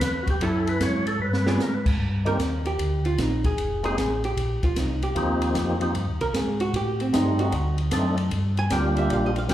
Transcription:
Already playing: tonewheel organ B4
0.01 tonewheel organ E2, kick, snare, hi-hat pedal, ride
0.23 tonewheel organ F#4
0.27 tonewheel organ E2 G4, kick, ride
0.41 tonewheel organ F#2 A4, hollow-body jazz guitar F#3 C#4 E4 A4, kick, ride
0.67 tonewheel organ B4, ride
0.80 tonewheel organ G#2 C#5, kick, snare, hi-hat pedal, ride
1.07 tonewheel organ A4, ride
1.19 tonewheel organ G2 B4
1.33 snare
1.47 hollow-body jazz guitar G3 B3 F4 G#4, tonewheel organ D5, snare
1.55 tonewheel organ G#2 B4
1.60 tonewheel organ A#4, snare, hi-hat pedal
1.74 tonewheel organ B4
1.86 kick, crash
1.99 tonewheel organ G2, kick
2.25 tonewheel organ D#3 A#3 C4 D4 G4, hollow-body jazz guitar A#4, ride
2.39 tonewheel organ D#2, kick, snare, hi-hat pedal, ride
2.65 hollow-body jazz guitar G4, ride
2.78 tonewheel organ D2, kick, ride
3.05 hollow-body jazz guitar F4, ride
3.18 tonewheel organ A#1, hollow-body jazz guitar D#4, kick, snare, hi-hat pedal, ride
3.44 hollow-body jazz guitar G#4, kick, ride
3.58 tonewheel organ F1, kick, ride
3.83 tonewheel organ G#3 A#3 C4 D#4 G4, hollow-body jazz guitar G#4, ride
3.97 tonewheel organ A1, kick, snare, hi-hat pedal, ride
4.24 hollow-body jazz guitar G4, ride
4.37 tonewheel organ A#1, kick, ride
4.63 tonewheel organ A#1, hollow-body jazz guitar F4, kick, ride
4.76 tonewheel organ C2, hollow-body jazz guitar D#4, kick, snare, hi-hat pedal, ride
5.02 hollow-body jazz guitar G4, ride
5.15 tonewheel organ D#2 F3 A#3 C4 D#4 G4, kick, ride
5.42 ride
5.55 tonewheel organ F2, kick, snare, hi-hat pedal, ride
5.81 tonewheel organ F3 A#3 C4 D#4 G4, ride
5.94 tonewheel organ G2, kick, ride
6.07 tonewheel organ D#2
6.20 tonewheel organ C2, hollow-body jazz guitar A#4, ride
6.34 tonewheel organ G#2, hollow-body jazz guitar G#4, kick, snare, hi-hat pedal, ride
6.60 hollow-body jazz guitar F#4, ride
6.73 tonewheel organ A2, hollow-body jazz guitar G4, kick, ride
7.00 hollow-body jazz guitar C4, ride
7.13 tonewheel organ G2 G3 A3 C4 D#4, hollow-body jazz guitar D#4, kick, snare, hi-hat pedal, ride
7.39 hollow-body jazz guitar F#4, ride
7.52 tonewheel organ D2, kick, ride
7.78 ride
7.91 tonewheel organ F#2 A3 C4 D4 D#4 A4, kick, snare, hi-hat pedal, ride
8.17 ride
8.31 tonewheel organ G2, kick, ride
8.57 hollow-body jazz guitar G#5, ride
8.70 tonewheel organ D2 G3 A#3 D4 F4 G4, hollow-body jazz guitar G5, kick, snare, hi-hat pedal, ride
8.97 hollow-body jazz guitar E5, ride
9.10 tonewheel organ A#1, hollow-body jazz guitar F5, kick, ride
9.26 hollow-body jazz guitar D#5
9.36 hollow-body jazz guitar F5, ride
9.48 tonewheel organ C2 G3 A#3 D4 F4 G4, kick, snare, hi-hat pedal, ride

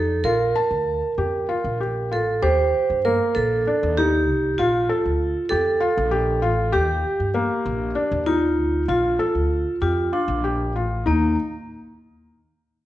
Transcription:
Already playing: upright bass F2, felt piano D#4, vibraphone A4
0.24 upright bass A#1, felt piano F4, vibraphone A#4
0.55 felt piano A5
0.70 upright bass D2
1.18 upright bass F2, felt piano G4
1.49 felt piano F4
1.64 upright bass A#1
1.80 felt piano G4
2.11 upright bass A1, felt piano F4, vibraphone A4
2.42 upright bass D#2, felt piano G4, vibraphone C5
2.90 upright bass G2
3.05 felt piano A#3, vibraphone A#4
3.35 upright bass A#1, vibraphone A4
3.67 felt piano D4
3.83 upright bass D#2
3.97 felt piano D#4, vibraphone G4
4.29 upright bass C2
4.58 upright bass A#1, vibraphone F4, felt piano F4
4.90 felt piano A4
5.06 upright bass D2
5.49 upright bass F2, felt piano G4, vibraphone A4
5.80 felt piano F4
5.98 upright bass A#1
6.11 felt piano G4
6.42 upright bass A1, felt piano F4
6.72 upright bass D#2, felt piano G4, vibraphone G4
7.20 upright bass G2
7.34 felt piano A#3
7.66 upright bass A#1
7.95 felt piano D4
8.12 upright bass D#2
8.26 felt piano D#4, vibraphone F4
8.58 upright bass D2
8.88 upright bass A#1, felt piano F4, vibraphone F4
9.19 felt piano A4
9.35 upright bass D2
9.81 upright bass F2, vibraphone F4, felt piano G4
10.13 vibraphone D4, felt piano F4
10.28 upright bass A#1
10.44 felt piano G4
10.75 upright bass A1, felt piano F4
11.06 upright bass D#2, vibraphone A#3, felt piano D#4

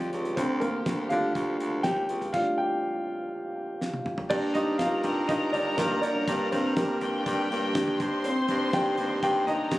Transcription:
Already playing: string section D#3 C4 G4, upright piano F3 G3 C4 D4 C5 D5
0.00 closed hi-hat, floor tom
0.12 baritone saxophone C#2, closed hi-hat
0.25 closed hi-hat
0.36 baritone saxophone D2, string section D3 G3 G4, upright piano C4 C5, kick, closed hi-hat
0.60 upright piano A#3 A#4, closed hi-hat, floor tom
0.86 baritone saxophone D2, kick, snare, closed hi-hat
1.09 baritone saxophone D3, upright piano G3 A3 D4 F4 F5, closed hi-hat, floor tom
1.35 baritone saxophone D2, kick, closed hi-hat
1.60 baritone saxophone D2, closed hi-hat
1.83 baritone saxophone D#2, upright piano G4 G5, kick, snare, closed hi-hat
1.97 floor tom
2.09 baritone saxophone C#2, closed hi-hat
2.21 closed hi-hat, floor tom
2.33 upright piano G3 A3 D4 F4 F5, kick, crash
2.58 upright piano G4 G5
3.81 snare
3.93 high tom
4.06 mid tom
4.18 floor tom
4.30 baritone saxophone G2, string section G3 D4 A#4, upright piano G3 A#3 D4 D5, violin section A#4 A#5, kick, crash
4.54 baritone saxophone G2, upright piano D#4 D#5, closed hi-hat, floor tom
4.78 baritone saxophone G2, upright piano F4 F5, kick, snare, closed hi-hat
5.03 baritone saxophone G2, closed hi-hat, floor tom
5.28 baritone saxophone G2, upright piano D#4 D#5, kick, closed hi-hat
5.52 baritone saxophone G2, upright piano D4 D5, closed hi-hat, floor tom
5.77 baritone saxophone G2, upright piano A#3 A#4, kick, snare, closed hi-hat
5.91 floor tom
6.01 baritone saxophone F#2, upright piano D4 D5, closed hi-hat
6.27 baritone saxophone G2, upright piano G3 A#3 D4, kick, closed hi-hat
6.51 baritone saxophone G2, upright piano C4 C5, closed hi-hat, floor tom
6.77 baritone saxophone G2, upright piano A#3 A#4, kick, snare, closed hi-hat
7.01 baritone saxophone G2, violin section G4 G5, closed hi-hat, floor tom
7.26 baritone saxophone G2, kick, closed hi-hat
7.51 baritone saxophone G2, upright piano G3 A#3 D4, closed hi-hat
7.75 baritone saxophone G2, kick, snare, closed hi-hat
7.88 floor tom
8.00 baritone saxophone G2, string section A#3 C4 D#4, violin section C5 C6, kick, closed hi-hat
8.24 upright piano C4 C5, closed hi-hat
8.48 baritone saxophone G2, closed hi-hat, floor tom
8.73 baritone saxophone G2, upright piano D#3 A#3 G4 D5 G5, kick, snare, closed hi-hat
8.97 baritone saxophone G2, closed hi-hat, floor tom
9.23 baritone saxophone G2, upright piano G4 G5, kick, closed hi-hat
9.47 baritone saxophone G2, upright piano D#4 D#5, violin section A#4 A#5, closed hi-hat, floor tom
9.71 baritone saxophone G2, kick, snare, closed hi-hat

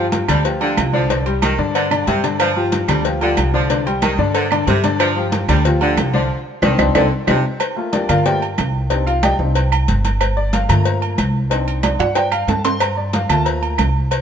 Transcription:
Already playing: upright bass G2, upright piano F3 F4 G4
0.12 cowbell, high conga, low agogo
0.28 upright bass D2, upright piano D3 D4 D5, saxophone section G3, cowbell, high conga, low conga, low agogo, claves
0.45 upright piano F3 F4 G4, cowbell, high conga
0.60 saxophone section D3, upright piano F3 F4 G4, high conga, low agogo
0.77 upright bass C2, cowbell, high conga, low timbale, low agogo, claves
0.93 upright piano D3 D4 D5, saxophone section F3
1.10 upright piano D3 D4 D5, cowbell, high conga, low agogo
1.26 upright piano G3 G4 C5, high conga, low agogo
1.42 saxophone section D#3, cowbell, high conga, low agogo, claves
1.58 upright bass G2, upright piano D3 D4 D5, high conga
1.75 saxophone section D3, cowbell, high conga, low agogo
1.91 upright piano D3 D4 D5, high conga, low agogo, claves
2.07 upright bass G2, saxophone section C3, upright piano G3 G4 C5, cowbell, high conga
2.24 upright piano D3 D4 D5, cowbell, low agogo
2.40 saxophone section F3, cowbell, high conga, low agogo, claves
2.56 upright piano F3 F4 G4, high conga
2.72 cowbell, high conga, low agogo
2.88 upright bass D2, upright piano D3 D4 D5, saxophone section G3, cowbell, high conga, low conga, low agogo, claves
3.05 upright piano F3 F4 G4, cowbell, high conga
3.21 saxophone section D3, upright piano F3 F4 G4, high conga, low agogo
3.37 upright bass C2, cowbell, high conga, low agogo, claves
3.54 upright piano D3 D4 D5, saxophone section F3
3.70 upright piano D3 D4 D5, cowbell, high conga, low agogo
3.86 upright piano G3 G4 C5, high conga, low agogo
4.02 saxophone section D#3, cowbell, high conga, low agogo, claves
4.18 upright bass G2, upright piano D3 D4 D5, high conga
4.35 saxophone section D3, cowbell, high conga, low agogo
4.51 upright piano D3 D4 D5, high conga, low agogo, claves
4.67 upright bass G2, saxophone section C3, upright piano G3 G4 C5, cowbell, high conga, low timbale
4.84 upright piano D3 D4 D5, cowbell, high conga, low agogo
5.00 saxophone section F3, cowbell, high conga, low agogo, claves
5.16 upright piano F3 F4 G4, high conga
5.32 cowbell, high conga, low agogo
5.48 upright bass D2, upright piano D3 D4 D5, saxophone section G3, cowbell, high conga, low conga, low agogo, claves
5.65 upright piano F3 F4 G4, cowbell, high conga, low conga
5.81 saxophone section D3, upright piano F3 F4 G4, high conga, low agogo
5.97 upright bass C2, cowbell, high conga, low timbale, low agogo, claves
6.14 upright piano D3 D4 D5, saxophone section F3, high conga
6.62 upright bass C2, saxophone section D#3, upright piano C4 D4 D#4, cowbell, high conga, high timbale, claves
6.78 upright bass C2, upright piano C4 D4 D#4, cowbell, high conga, high timbale, claves
6.95 upright bass C2, saxophone section D3, upright piano C4 D4 D#4, cowbell, high conga, high timbale, claves
7.27 upright bass C2, saxophone section C3, upright piano C4 D4 D#4, cowbell, high conga, high timbale, claves
7.60 cowbell, high conga, low agogo, claves
7.76 upright piano A3 A#3 F4, high conga
7.93 upright piano D4 G4 A#4 D5, cowbell, high conga, low agogo
8.09 upright bass G2, upright piano F4 A#4 D5 F5, cowbell, high conga, low conga, low agogo, claves
8.25 upright piano A3 A#3 F4 G4 A#4 D5 G5, cowbell, high conga, low conga
8.42 high conga, low agogo
8.58 upright bass C2, cowbell, high conga, low timbale, low agogo, claves
8.90 upright piano C4 D4 D#4 G4 D5, cowbell, high conga, low agogo
9.07 upright piano F4 F5, high conga, low agogo
9.23 upright piano G4 D5 D#5 G5, cowbell, high conga, low agogo, claves
9.39 upright bass C2, upright piano C4 D4 D#4, high conga
9.55 cowbell, high conga, low agogo
9.72 high conga, low agogo, claves
9.88 upright bass G1, cowbell, high conga
10.05 cowbell, high conga, low agogo
10.21 cowbell, high conga, low agogo, claves
10.37 upright piano D5, high conga
10.53 upright piano F5, cowbell, high conga, low agogo
10.69 upright bass G2, upright piano A3 A#3 F4 A#5, cowbell, high conga, low conga, low agogo, claves
10.85 cowbell
11.02 high conga, low agogo
11.18 upright bass C2, cowbell, high conga, low agogo, claves
11.50 upright piano C4 D4 D#4, cowbell, high conga, low agogo
11.67 high conga, low agogo
11.83 cowbell, high conga, high timbale, low agogo, claves
11.99 upright bass G2, upright piano F#5, high conga, high timbale
12.15 upright piano G5, cowbell, high conga, high timbale, low agogo
12.32 upright piano F5, high conga, low agogo, claves
12.47 upright bass G2, upright piano A5, cowbell, high conga, low timbale
12.65 upright piano C6, cowbell, low timbale, low agogo
12.80 upright piano A#5, cowbell, high conga, low agogo, claves
12.97 upright piano D5, high conga
13.13 upright piano F5, cowbell, high conga, low agogo
13.29 upright bass D2, upright piano A3 A#3 F4 A5, cowbell, high conga, low conga, low agogo, claves
13.46 upright piano A#5, cowbell, high conga
13.62 high conga, low agogo
13.78 upright bass C2, cowbell, high conga, low timbale, low agogo, claves
14.11 cowbell, high conga, low agogo

